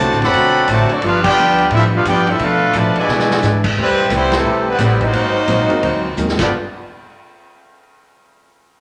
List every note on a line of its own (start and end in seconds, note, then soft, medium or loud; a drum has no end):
0.00 0.12 C2 loud
0.00 0.18 C3 medium
0.00 0.23 D3 medium
0.00 1.01 D3 medium
0.00 0.18 F#3 loud
0.00 1.01 F#3 medium
0.00 0.18 A3 medium
0.00 1.01 A3 medium
0.00 0.23 A3 medium
0.00 0.23 C4 medium
0.00 1.01 D4 medium
0.00 0.18 F#4 loud
0.00 0.24 F#4 medium
0.00 0.18 C5 medium
0.00 0.19 D5 loud
0.00 0.19 A5 loud
0.12 0.22 A1 medium
0.12 snare soft
0.21 0.32 F#1 medium
0.21 0.67 F#3 loud
0.21 0.69 B3 medium
0.21 0.68 C4 loud
0.21 0.69 A4 loud
0.21 0.69 D5 loud
0.21 0.69 F#5 loud
0.21 0.69 B5 loud
0.21 snare medium
0.21 ride medium
0.33 0.67 B1 medium
0.33 0.58 D3 medium
0.33 0.58 A3 medium
0.33 0.58 C4 medium
0.33 ride medium
0.37 0.59 F#4 medium
0.68 0.88 A1 medium
0.68 0.89 C3 medium
0.68 0.92 D3 medium
0.68 0.89 F#3 medium
0.68 0.89 A3 loud
0.68 0.93 A3 medium
0.68 0.92 C4 medium
0.68 0.93 F#4 medium
0.68 0.90 F#4 medium
0.68 0.90 C5 loud
0.68 0.90 D5 loud
0.68 0.90 A5 loud
0.68 hi-hat pedal medium
0.68 ride medium
0.89 1.04 F#3 medium
0.89 1.04 A3 medium
0.89 1.04 C4 medium
0.89 1.02 D4 medium
0.89 1.04 F#4 medium
0.89 1.04 A4 medium
0.89 1.04 D5 medium
0.89 muted upright bass stroke soft
0.89 ride medium
1.02 1.36 G1 medium
1.02 1.26 G2 soft
1.02 3.74 D3 medium
1.02 1.27 F3 medium
1.02 2.38 G3 medium
1.02 1.22 B3 medium
1.02 3.74 B3 medium
1.02 1.27 B3 soft
1.02 1.22 D4 medium
1.02 1.27 D4 medium
1.02 1.25 D4 loud
1.02 2.38 F4 medium
1.02 1.23 F4 medium
1.02 1.24 G4 medium
1.02 1.25 B4 medium
1.02 ride medium
1.06 1.25 F5 loud
1.23 1.67 B3 medium
1.23 1.68 D4 medium
1.23 1.67 G4 medium
1.23 kick loud
1.23 crash loud
1.28 1.70 F4 loud
1.28 1.70 B4 medium
1.28 1.70 D5 medium
1.28 1.70 G5 loud
1.37 1.70 D2 medium
1.37 1.61 G2 medium
1.37 1.62 F3 medium
1.37 1.62 B3 medium
1.37 1.62 D4 medium
1.37 hi-hat pedal medium
1.58 ride medium
1.71 1.95 G2 medium
1.71 2.04 A2 medium
1.71 1.96 F3 medium
1.71 1.96 B3 medium
1.71 1.82 E4 medium
1.71 ride medium
1.75 1.84 C4 medium
1.75 1.96 D4 medium
1.75 1.84 F4 medium
1.75 1.84 A4 medium
1.75 1.84 E5 loud
1.94 2.06 B3 medium
1.94 2.05 D4 medium
1.94 2.06 D4 medium
1.94 2.05 F4 medium
1.94 2.06 G4 medium
1.94 2.07 B4 medium
1.94 2.06 F5 medium
2.05 2.38 G2 loud
2.05 2.29 G2 medium
2.05 2.30 F3 medium
2.05 2.27 B3 medium
2.05 2.30 B3 medium
2.05 2.27 D4 medium
2.05 2.27 G4 medium
2.05 2.27 D5 medium
2.05 2.27 G5 loud
2.05 hi-hat pedal medium
2.05 ride medium
2.09 2.30 D4 medium
2.09 2.28 F4 medium
2.09 2.28 B4 medium
2.27 2.41 E4 medium
2.27 2.41 F4 medium
2.27 2.42 A4 medium
2.27 2.42 E5 loud
2.27 ride medium
2.31 2.42 C4 medium
2.39 2.73 B2 medium
2.39 2.64 B2 soft
2.39 3.08 A3 medium
2.39 2.75 D4 medium
2.39 2.76 D4 medium
2.39 3.08 F4 medium
2.39 2.76 A4 medium
2.39 2.76 B4 medium
2.39 2.75 F5 medium
2.39 ride medium
2.43 2.65 F3 soft
2.43 2.76 A3 medium
2.43 2.65 A3 soft
2.43 2.65 D4 medium
2.43 2.76 F4 medium
2.73 2.94 A2 loud
2.73 2.98 B2 medium
2.73 2.98 F3 medium
2.73 2.98 A3 medium
2.73 2.97 A3 medium
2.73 2.98 D4 medium
2.73 hi-hat pedal medium
2.73 ride medium
2.78 2.97 D3 medium
2.78 2.98 F3 medium
2.78 2.98 F4 medium
2.78 2.97 B4 medium
2.78 2.97 D5 medium
2.78 2.98 A5 loud
2.96 3.61 B2 medium
2.96 3.62 D3 medium
2.96 3.62 G#3 medium
2.96 3.62 E4 medium
2.96 3.62 B4 medium
2.96 3.62 D5 medium
2.96 3.62 G#5 medium
2.96 muted upright bass stroke soft
2.96 ride medium
3.08 3.42 B2 loud
3.08 3.32 E3 medium
3.08 3.77 G#3 medium
3.08 3.33 B3 medium
3.08 3.77 E4 medium
3.08 snare medium
3.12 3.33 D4 medium
3.12 3.33 G#4 medium
3.19 snare medium
3.31 snare loud
3.42 3.76 G#2 loud
3.42 3.66 E3 medium
3.42 3.66 B3 medium
3.42 3.66 D4 medium
3.42 3.66 G#4 medium
3.42 snare medium
3.42 hi-hat pedal medium
3.64 kick medium
3.64 crash medium
3.77 3.89 E2 medium
3.77 4.09 E3 medium
3.77 4.09 G3 loud
3.77 4.00 A3 soft
3.77 4.00 C4 soft
3.77 4.10 C4 medium
3.77 4.11 C4 loud
3.77 4.01 G4 soft
3.77 4.01 B4 soft
3.81 4.11 G3 medium
3.81 4.11 E4 medium
3.81 4.11 B4 loud
3.89 3.98 C2 medium
3.99 4.09 A1 medium
4.09 4.44 C2 medium
4.09 4.33 E3 medium
4.09 4.33 G3 medium
4.09 4.34 A3 medium
4.09 4.34 C4 medium
4.09 4.33 C4 medium
4.09 4.35 G4 medium
4.09 4.35 B4 medium
4.09 hi-hat pedal medium
4.09 ride medium
4.14 4.35 G3 loud
4.14 4.35 B3 loud
4.14 4.35 E4 loud
4.14 4.35 C5 loud
4.32 4.66 E3 medium
4.32 4.44 A3 medium
4.32 4.66 A3 medium
4.32 4.45 C4 medium
4.32 4.45 E4 medium
4.32 4.45 G4 medium
4.32 4.45 B4 medium
4.32 snare loud
4.32 ride medium
4.36 4.66 C3 medium
4.36 4.67 G3 medium
4.36 4.66 C4 medium
4.36 4.66 E4 medium
4.36 4.67 A4 loud
4.44 4.78 B1 medium
4.44 4.68 A3 medium
4.44 4.69 C4 medium
4.44 4.69 G4 medium
4.44 4.70 B4 medium
4.69 4.78 E3 medium
4.69 4.79 G3 medium
4.69 4.81 G3 medium
4.69 4.79 B3 medium
4.69 4.81 C4 medium
4.69 4.81 E4 medium
4.69 4.81 B4 loud
4.79 5.13 A1 loud
4.79 5.00 E3 medium
4.79 5.00 G3 medium
4.79 4.99 A3 medium
4.79 5.03 A3 medium
4.79 5.00 B3 medium
4.79 4.99 C4 medium
4.79 5.03 C4 medium
4.79 4.99 E4 medium
4.79 4.99 G4 medium
4.79 5.03 G4 medium
4.79 5.04 B4 medium
4.79 5.01 B4 loud
4.79 5.00 D5 medium
4.79 snare soft
4.79 hi-hat pedal medium
4.79 ride medium
4.83 5.02 G3 medium
4.83 5.02 C4 medium
4.83 5.02 E4 medium
5.01 6.17 F#3 medium
5.01 6.19 A#3 medium
5.01 6.17 C4 medium
5.01 6.17 D#4 medium
5.01 6.19 D#4 medium
5.01 6.19 C5 loud
5.01 kick medium
5.01 ride medium
5.05 6.19 F#4 medium
5.13 5.47 G#1 medium
5.13 5.37 G#2 soft
5.13 5.37 F#3 soft
5.13 5.38 A#3 medium
5.13 5.38 C4 medium
5.13 ride medium
5.47 5.68 A#1 medium
5.47 5.71 G#2 medium
5.47 5.72 F#3 medium
5.47 5.72 A#3 medium
5.47 5.72 C4 medium
5.47 hi-hat pedal medium
5.47 ride medium
5.69 5.81 G#3 medium
5.69 5.81 C4 medium
5.69 5.82 D#4 medium
5.69 5.82 F#4 medium
5.69 5.82 A#4 medium
5.69 muted upright bass stroke soft
5.69 ride medium
5.82 6.16 D2 medium
5.82 6.06 G#2 medium
5.82 6.06 F#3 medium
5.82 6.06 A#3 medium
5.82 6.07 C4 medium
5.82 ride medium
6.17 6.38 D#2 medium
6.17 6.39 G#2 medium
6.17 6.38 F#3 medium
6.17 6.37 G#3 medium
6.17 6.39 A#3 medium
6.17 6.37 C4 medium
6.17 6.40 C4 medium
6.17 6.38 D#4 medium
6.17 6.37 F#4 medium
6.17 6.38 A#4 medium
6.17 hi-hat pedal medium
6.29 snare medium
6.39 6.51 G1 medium
6.39 6.51 G2 medium
6.39 6.51 D3 medium
6.39 6.52 F3 medium
6.39 6.49 G3 medium
6.39 6.50 G3 medium
6.39 6.49 B3 medium
6.39 6.51 B3 medium
6.39 6.52 B3 medium
6.39 6.51 D4 medium
6.39 6.51 F4 medium
6.39 6.50 F4 medium
6.39 6.52 F4 medium
6.39 6.51 A4 medium
6.39 6.50 A4 medium
6.39 6.52 B4 medium
6.39 6.52 D5 medium
6.39 6.52 G5 medium
6.39 kick loud
6.39 snare medium
6.39 crash medium